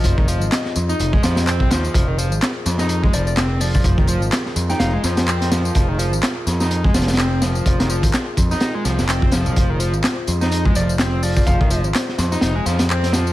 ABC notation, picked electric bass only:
X:1
M:4/4
L:1/16
Q:"Swing 16ths" 1/4=126
K:Cdor
V:1 name="Picked electric bass" clef=bass
F,,,3 _A,,, z2 F,, z F,,, z F,,3 C,, E,, z | F,,,3 _A,,, z2 F,,3 z F,,,4- F,,, z | F,,,3 _A,,, z2 F,, z F,,, z F,,4- F,, z | F,,,3 _A,,, z2 F,,3 z F,,,4- F,,, z |
F,,,3 _A,,, z2 F,, z3 C,, F,,,4 C,, | F,,,3 _A,,, z2 F,,3 z F,,,4- F,,, z | F,,,3 _A,,, z2 F,, z F,,, z F,,4- F,, z |]